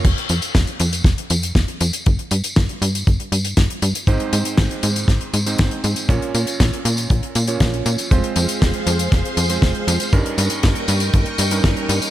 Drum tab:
CC |x---------------|----------------|----------------|----------------|
HH |xxxxxxxxxxxxxxxx|xxxxxxxxxxxxxxxx|xxxxxxxxxxxxxxxx|xxxxxxxxxxxxxxxx|
TB |x-xxx-xx--xx--xx|--xxx-xxx-xx--xx|x-xxx-xx--xx--xx|x-xxx-xxx-xx--xx|
SD |----o---o---o---|----o-------o---|----o---o---o---|----o-------o---|
BD |o---o---o---o---|o---o---o---o---|o---o---o---o---|o---o---o---o---|

CC |----------------|----------------|
HH |xxxxxxxxxxxxxxxx|xxxxxxxxxxxxxxxx|
TB |--xxx-xx--xx--xx|x-xxx-xxx-xx--xx|
SD |----o---o---o---|----o-------o---|
BD |o---o---o---o---|o---o---o---o---|